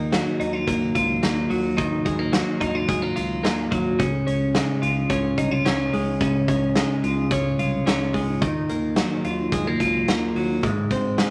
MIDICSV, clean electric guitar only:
0, 0, Header, 1, 2, 480
1, 0, Start_track
1, 0, Tempo, 552995
1, 1550, Time_signature, 4, 2, 24, 8
1, 9810, End_track
2, 0, Start_track
2, 0, Title_t, "Clean electric guitar"
2, 0, Program_c, 0, 27
2, 0, Note_on_c, 0, 51, 81
2, 0, Note_on_c, 0, 58, 51
2, 0, Note_on_c, 0, 65, 52
2, 110, Note_on_c, 0, 54, 53
2, 136, Note_off_c, 0, 65, 0
2, 345, Note_on_c, 0, 63, 59
2, 460, Note_off_c, 0, 63, 0
2, 460, Note_on_c, 0, 65, 53
2, 575, Note_off_c, 0, 58, 0
2, 585, Note_on_c, 0, 58, 60
2, 814, Note_off_c, 0, 65, 0
2, 825, Note_on_c, 0, 65, 63
2, 1055, Note_off_c, 0, 58, 0
2, 1065, Note_on_c, 0, 58, 56
2, 1291, Note_off_c, 0, 54, 0
2, 1302, Note_on_c, 0, 54, 52
2, 1526, Note_off_c, 0, 51, 0
2, 1536, Note_on_c, 0, 51, 80
2, 1777, Note_off_c, 0, 58, 0
2, 1781, Note_on_c, 0, 56, 51
2, 1901, Note_off_c, 0, 56, 0
2, 1901, Note_on_c, 0, 58, 44
2, 2007, Note_off_c, 0, 54, 0
2, 2017, Note_on_c, 0, 54, 53
2, 2258, Note_off_c, 0, 65, 0
2, 2261, Note_on_c, 0, 63, 62
2, 2387, Note_off_c, 0, 63, 0
2, 2387, Note_on_c, 0, 65, 55
2, 2501, Note_off_c, 0, 58, 0
2, 2504, Note_on_c, 0, 56, 60
2, 2622, Note_off_c, 0, 56, 0
2, 2622, Note_on_c, 0, 58, 54
2, 2732, Note_off_c, 0, 65, 0
2, 2742, Note_on_c, 0, 65, 55
2, 2971, Note_off_c, 0, 58, 0
2, 2981, Note_on_c, 0, 58, 56
2, 3210, Note_off_c, 0, 54, 0
2, 3220, Note_on_c, 0, 54, 52
2, 3459, Note_off_c, 0, 51, 0
2, 3462, Note_on_c, 0, 49, 77
2, 3513, Note_off_c, 0, 54, 0
2, 3513, Note_off_c, 0, 58, 0
2, 3704, Note_on_c, 0, 61, 54
2, 3946, Note_on_c, 0, 56, 48
2, 4180, Note_off_c, 0, 65, 0
2, 4183, Note_on_c, 0, 65, 58
2, 4418, Note_off_c, 0, 61, 0
2, 4429, Note_on_c, 0, 61, 56
2, 4664, Note_off_c, 0, 65, 0
2, 4668, Note_on_c, 0, 63, 57
2, 4786, Note_off_c, 0, 63, 0
2, 4786, Note_on_c, 0, 65, 59
2, 4897, Note_off_c, 0, 61, 0
2, 4907, Note_on_c, 0, 61, 60
2, 5140, Note_off_c, 0, 56, 0
2, 5150, Note_on_c, 0, 56, 56
2, 5380, Note_off_c, 0, 49, 0
2, 5390, Note_on_c, 0, 49, 84
2, 5622, Note_off_c, 0, 61, 0
2, 5632, Note_on_c, 0, 61, 53
2, 5861, Note_off_c, 0, 56, 0
2, 5872, Note_on_c, 0, 56, 57
2, 6100, Note_off_c, 0, 65, 0
2, 6110, Note_on_c, 0, 65, 54
2, 6344, Note_off_c, 0, 61, 0
2, 6355, Note_on_c, 0, 61, 62
2, 6587, Note_off_c, 0, 65, 0
2, 6590, Note_on_c, 0, 65, 55
2, 6816, Note_off_c, 0, 61, 0
2, 6826, Note_on_c, 0, 61, 55
2, 7055, Note_off_c, 0, 56, 0
2, 7066, Note_on_c, 0, 56, 51
2, 7302, Note_off_c, 0, 49, 0
2, 7306, Note_on_c, 0, 51, 82
2, 7356, Note_off_c, 0, 56, 0
2, 7356, Note_off_c, 0, 61, 0
2, 7548, Note_on_c, 0, 58, 58
2, 7784, Note_on_c, 0, 54, 56
2, 7810, Note_off_c, 0, 65, 0
2, 8028, Note_on_c, 0, 65, 60
2, 8269, Note_off_c, 0, 58, 0
2, 8272, Note_on_c, 0, 56, 60
2, 8396, Note_off_c, 0, 56, 0
2, 8396, Note_on_c, 0, 58, 50
2, 8502, Note_off_c, 0, 65, 0
2, 8512, Note_on_c, 0, 65, 56
2, 8746, Note_off_c, 0, 58, 0
2, 8756, Note_on_c, 0, 58, 61
2, 8983, Note_off_c, 0, 54, 0
2, 8994, Note_on_c, 0, 54, 53
2, 9234, Note_on_c, 0, 44, 85
2, 9279, Note_off_c, 0, 65, 0
2, 9280, Note_off_c, 0, 54, 0
2, 9281, Note_off_c, 0, 58, 0
2, 9474, Note_on_c, 0, 60, 50
2, 9710, Note_on_c, 0, 56, 56
2, 9810, Note_off_c, 0, 44, 0
2, 9810, Note_off_c, 0, 51, 0
2, 9810, Note_off_c, 0, 56, 0
2, 9810, Note_off_c, 0, 60, 0
2, 9810, End_track
0, 0, End_of_file